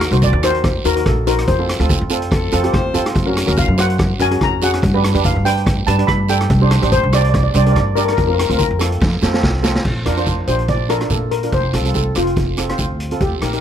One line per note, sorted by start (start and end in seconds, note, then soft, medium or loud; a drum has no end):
0.01 cross-stick medium
0.01 closed hi-hat medium
0.11 0.30 C2 loud
0.11 0.31 D#4 medium
0.11 0.31 F#4 medium
0.11 0.31 C5 medium
0.11 closed hi-hat medium
0.22 0.44 D5 loud
0.22 kick medium
0.22 closed hi-hat medium
0.22 short guiro medium
0.33 0.78 D#2 loud
0.43 0.68 D#4 medium
0.43 0.69 F#4 medium
0.43 0.69 A#4 medium
0.43 0.83 C5 loud
0.43 cross-stick loud
0.43 closed hi-hat medium
0.43 short guiro medium
0.54 closed hi-hat soft
0.64 kick loud
0.64 cross-stick medium
0.64 closed hi-hat medium
0.64 long guiro medium
0.85 1.03 D#2 loud
0.85 0.92 D#4 medium
0.85 0.92 F#4 medium
0.85 0.92 A#4 medium
0.85 1.07 A#4 loud
0.85 closed hi-hat medium
0.85 short guiro medium
0.96 1.15 D#4 medium
0.96 1.15 F#4 medium
0.96 1.15 A#4 medium
0.96 closed hi-hat medium
1.06 1.42 A#1 medium
1.06 1.25 A4 medium
1.06 kick medium
1.06 cross-stick medium
1.06 closed hi-hat medium
1.27 1.46 D#4 medium
1.27 1.46 F#4 medium
1.27 1.47 A#4 loud
1.27 1.46 C5 medium
1.27 closed hi-hat medium
1.27 short guiro medium
1.38 cross-stick medium
1.38 closed hi-hat medium
1.48 1.76 F2 loud
1.48 2.69 C5 medium
1.48 kick loud
1.48 closed hi-hat medium
1.48 long guiro medium
1.59 1.71 C4 medium
1.59 1.71 F4 medium
1.59 1.71 A4 medium
1.69 cross-stick medium
1.69 closed hi-hat medium
1.80 1.98 D2 loud
1.80 1.98 C4 medium
1.80 1.98 F4 medium
1.80 1.99 A4 medium
1.80 closed hi-hat medium
1.89 kick loud
1.89 closed hi-hat medium
1.89 short guiro medium
2.01 2.46 F2 loud
2.10 2.36 C4 medium
2.10 2.36 F4 medium
2.10 2.36 A4 medium
2.10 closed hi-hat medium
2.10 short guiro medium
2.22 closed hi-hat medium
2.31 2.75 A4 loud
2.31 kick loud
2.31 cross-stick medium
2.31 closed hi-hat medium
2.31 long guiro medium
2.52 2.71 F2 loud
2.52 2.59 C4 loud
2.52 2.59 F4 medium
2.52 2.59 A4 loud
2.52 closed hi-hat medium
2.52 short guiro medium
2.64 2.82 C4 medium
2.64 2.83 F4 medium
2.64 2.82 G4 medium
2.64 closed hi-hat medium
2.74 2.92 D#2 medium
2.74 3.06 C5 loud
2.74 kick medium
2.74 cross-stick medium
2.74 closed hi-hat medium
2.94 3.13 F2 medium
2.94 3.13 C4 loud
2.94 3.13 F4 medium
2.94 3.13 A4 medium
2.94 closed hi-hat medium
2.94 short guiro medium
3.06 cross-stick medium
3.06 closed hi-hat medium
3.15 3.43 F#2 loud
3.15 kick medium
3.15 closed hi-hat medium
3.15 long guiro medium
3.26 3.38 C#4 medium
3.26 3.38 F#4 medium
3.26 3.38 A#4 medium
3.37 cross-stick medium
3.37 closed hi-hat medium
3.46 3.66 D#2 loud
3.46 3.66 C#4 medium
3.46 3.66 F#4 medium
3.46 3.66 A#4 medium
3.46 closed hi-hat medium
3.57 3.68 F5 medium
3.57 kick loud
3.57 closed hi-hat medium
3.57 short guiro medium
3.68 4.13 F#2 loud
3.78 4.03 C#4 medium
3.78 4.03 F#4 medium
3.78 4.03 C5 medium
3.78 4.22 F#5 medium
3.78 cross-stick medium
3.78 closed hi-hat medium
3.78 short guiro medium
3.90 closed hi-hat medium
3.98 kick loud
3.98 cross-stick medium
3.98 closed hi-hat medium
3.98 long guiro medium
4.19 4.38 F#2 medium
4.19 4.27 C#4 medium
4.19 4.27 F#4 medium
4.19 4.27 A#4 medium
4.19 4.40 G#5 loud
4.19 closed hi-hat medium
4.19 short guiro medium
4.31 4.50 C#4 medium
4.31 4.50 F#4 medium
4.31 4.50 G#4 medium
4.31 closed hi-hat medium
4.41 4.77 F2 medium
4.41 4.63 A#5 medium
4.41 kick medium
4.41 cross-stick medium
4.41 closed hi-hat medium
4.62 4.81 C#4 medium
4.62 4.81 F#4 medium
4.62 4.81 G#4 medium
4.62 4.73 F#5 medium
4.62 closed hi-hat medium
4.62 short guiro medium
4.73 cross-stick medium
4.73 closed hi-hat medium
4.82 5.11 G2 loud
4.82 kick loud
4.82 closed hi-hat medium
4.82 long guiro medium
4.94 5.06 D4 medium
4.94 5.06 G4 medium
4.94 5.06 B4 loud
5.04 cross-stick medium
5.04 closed hi-hat loud
5.14 5.33 F2 loud
5.14 5.33 D4 medium
5.14 5.33 G4 medium
5.14 5.33 B4 medium
5.14 closed hi-hat medium
5.24 5.46 F5 medium
5.24 kick medium
5.24 closed hi-hat medium
5.24 short guiro medium
5.36 5.81 G2 medium
5.45 5.71 D4 medium
5.45 5.71 G4 medium
5.45 5.71 B4 medium
5.45 5.88 G5 loud
5.45 closed hi-hat loud
5.45 short guiro medium
5.57 closed hi-hat medium
5.66 kick loud
5.66 cross-stick medium
5.66 closed hi-hat medium
5.66 long guiro medium
5.87 6.06 G2 loud
5.87 5.94 D4 medium
5.87 5.94 G4 medium
5.87 5.94 B4 medium
5.87 6.09 A5 loud
5.87 closed hi-hat loud
5.87 short guiro medium
5.98 6.17 D4 medium
5.98 6.17 G4 medium
5.98 6.17 B4 medium
5.98 closed hi-hat medium
6.07 6.45 G2 loud
6.07 6.29 B5 loud
6.07 kick loud
6.07 cross-stick medium
6.07 closed hi-hat medium
6.29 6.48 D4 medium
6.29 6.48 G4 medium
6.29 6.48 A4 medium
6.29 6.49 G5 medium
6.29 closed hi-hat medium
6.29 short guiro medium
6.41 cross-stick medium
6.41 closed hi-hat medium
6.50 6.78 C2 loud
6.50 kick loud
6.50 closed hi-hat medium
6.50 long guiro medium
6.61 6.73 D4 medium
6.61 6.73 G4 medium
6.61 6.73 C5 loud
6.71 cross-stick loud
6.71 closed hi-hat medium
6.82 7.01 A1 loud
6.82 7.01 D4 medium
6.82 7.01 G4 medium
6.82 7.01 C5 medium
6.82 closed hi-hat medium
6.92 7.02 C5 loud
6.92 kick medium
6.92 closed hi-hat medium
6.92 short guiro medium
7.03 7.48 C2 loud
7.13 7.38 D4 medium
7.13 7.38 G4 medium
7.13 7.39 C5 medium
7.13 7.20 D5 loud
7.13 cross-stick loud
7.13 closed hi-hat medium
7.13 short guiro medium
7.22 7.28 D5 medium
7.22 closed hi-hat medium
7.30 7.35 D5 medium
7.34 7.42 D5 medium
7.34 kick loud
7.34 cross-stick medium
7.34 closed hi-hat medium
7.34 long guiro medium
7.44 7.49 D5 medium
7.51 7.73 C2 loud
7.51 7.56 D5 medium
7.51 short guiro medium
7.55 7.62 D4 medium
7.55 7.62 G4 medium
7.55 7.62 C5 medium
7.55 7.64 D5 medium
7.55 closed hi-hat medium
7.65 7.85 D4 medium
7.65 7.85 G4 medium
7.65 7.85 A#4 medium
7.65 7.71 D5 medium
7.65 closed hi-hat medium
7.73 8.12 G2 medium
7.73 7.79 D5 medium
7.73 kick medium
7.73 cross-stick medium
7.73 closed hi-hat medium
7.80 7.87 D5 medium
7.95 8.16 D4 medium
7.95 8.16 G4 medium
7.95 8.04 A#4 loud
7.95 8.16 D5 medium
7.95 closed hi-hat medium
7.95 short guiro medium
8.05 8.11 A#4 medium
8.05 cross-stick medium
8.05 closed hi-hat medium
8.12 8.19 A#4 medium
8.17 8.46 F2 loud
8.17 8.26 A#4 medium
8.17 kick loud
8.17 closed hi-hat medium
8.17 long guiro medium
8.27 8.40 C4 medium
8.27 8.41 F4 medium
8.27 8.33 A#4 medium
8.27 8.41 A#4 medium
8.34 8.40 A#4 medium
8.39 8.48 A#4 medium
8.39 cross-stick medium
8.39 closed hi-hat medium
8.49 8.68 D2 loud
8.49 8.68 C4 medium
8.49 8.68 F4 medium
8.49 8.56 A#4 medium
8.49 8.68 A#4 medium
8.49 closed hi-hat medium
8.58 8.78 A#4 medium
8.58 kick medium
8.58 closed hi-hat medium
8.58 short guiro medium
8.71 8.97 F2 loud
8.79 9.01 C4 medium
8.79 9.01 F4 medium
8.79 9.59 A4 medium
8.79 9.01 A4 medium
8.79 cross-stick loud
8.79 closed hi-hat loud
8.79 short guiro medium
8.92 closed hi-hat medium
9.01 9.19 F2 loud
9.01 kick loud
9.01 snare medium
9.01 long guiro medium
9.22 9.40 F2 loud
9.22 9.29 C4 medium
9.22 9.29 F4 medium
9.22 9.29 A4 medium
9.22 snare medium
9.22 short guiro medium
9.33 9.52 C4 medium
9.33 9.52 F4 medium
9.33 9.52 A4 medium
9.33 snare medium
9.43 9.80 C2 medium
9.43 kick medium
9.43 snare medium
9.63 9.83 C4 loud
9.63 9.82 F4 medium
9.63 9.83 A4 loud
9.63 snare loud
9.63 short guiro medium
9.75 snare loud
9.85 10.07 A#1 medium
9.85 kick medium
9.85 crash medium
9.85 long guiro medium
10.05 10.42 F2 medium
10.05 10.13 D4 medium
10.05 10.13 F4 medium
10.05 10.13 A#4 loud
10.05 cross-stick medium
10.05 closed hi-hat medium
10.17 10.36 D4 medium
10.17 10.36 F4 medium
10.17 10.36 C5 loud
10.17 closed hi-hat medium
10.26 kick medium
10.26 closed hi-hat medium
10.26 short guiro medium
10.47 11.03 A#1 medium
10.47 10.74 D4 medium
10.47 10.74 F4 medium
10.47 10.74 G4 medium
10.47 10.69 C5 medium
10.47 closed hi-hat medium
10.47 short guiro medium
10.59 closed hi-hat soft
10.68 10.88 D5 medium
10.68 kick loud
10.68 closed hi-hat medium
10.68 long guiro medium
10.89 10.96 D4 medium
10.89 10.96 F4 medium
10.89 10.96 A4 medium
10.89 11.09 A#4 loud
10.89 cross-stick medium
10.89 closed hi-hat medium
10.89 short guiro medium
11.01 11.26 D4 medium
11.01 11.26 F4 medium
11.01 11.26 A#4 medium
11.01 cross-stick medium
11.01 closed hi-hat medium
11.10 11.47 A#2 medium
11.10 11.30 A4 medium
11.10 kick medium
11.10 closed hi-hat medium
11.10 short guiro medium
11.31 11.51 A#4 medium
11.31 closed hi-hat medium
11.43 11.53 D4 medium
11.43 11.53 F4 medium
11.43 11.53 A#4 medium
11.43 closed hi-hat medium
11.52 11.75 F1 medium
11.52 11.97 C5 medium
11.52 kick loud
11.52 closed hi-hat medium
11.52 long guiro medium
11.73 12.10 C2 medium
11.73 11.80 C4 medium
11.73 11.81 F4 medium
11.73 11.81 A4 medium
11.73 cross-stick medium
11.73 closed hi-hat medium
11.85 12.04 C4 medium
11.85 12.04 F4 medium
11.85 12.04 A4 medium
11.85 closed hi-hat medium
11.94 12.15 A4 medium
11.94 kick medium
11.94 closed hi-hat medium
11.94 short guiro medium
12.15 12.71 F1 medium
12.15 12.41 C4 medium
12.15 12.41 F4 medium
12.15 13.25 F4 medium
12.15 12.41 C5 medium
12.15 cross-stick medium
12.15 closed hi-hat medium
12.15 short guiro medium
12.27 closed hi-hat soft
12.36 kick loud
12.36 closed hi-hat medium
12.36 long guiro medium
12.57 12.64 C4 medium
12.57 12.64 F4 medium
12.57 12.65 A4 medium
12.57 cross-stick medium
12.57 closed hi-hat medium
12.57 short guiro medium
12.69 12.94 C4 medium
12.69 12.94 F4 medium
12.69 12.94 C5 medium
12.69 cross-stick medium
12.69 closed hi-hat medium
12.78 13.15 D2 medium
12.78 kick medium
12.78 closed hi-hat medium
12.78 short guiro medium
13.00 closed hi-hat medium
13.11 13.21 C4 medium
13.11 13.21 F4 medium
13.11 13.21 A4 medium
13.11 closed hi-hat medium
13.20 13.43 D#2 medium
13.20 13.61 G4 medium
13.20 kick medium
13.20 closed hi-hat medium
13.20 long guiro medium
13.42 13.61 A#1 medium
13.42 13.49 D#4 medium
13.42 13.49 G4 medium
13.42 13.49 A#4 medium
13.42 cross-stick medium
13.42 closed hi-hat medium
13.53 13.61 D#4 medium
13.53 13.61 G4 medium
13.53 13.61 A#4 medium
13.53 closed hi-hat medium